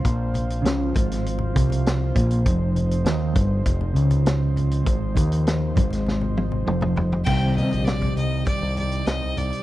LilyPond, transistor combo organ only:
\new Staff \with { instrumentName = "Transistor combo organ" } { \time 4/4 \key f \dorian \tempo 4 = 100 << { <f c' c''>1~ | <f c' c''>1~ | <f c' c''>1 | <g c' g'>1 | } \\ { f'1 | ees'1~ | ees'1 | ees'1 | } >> }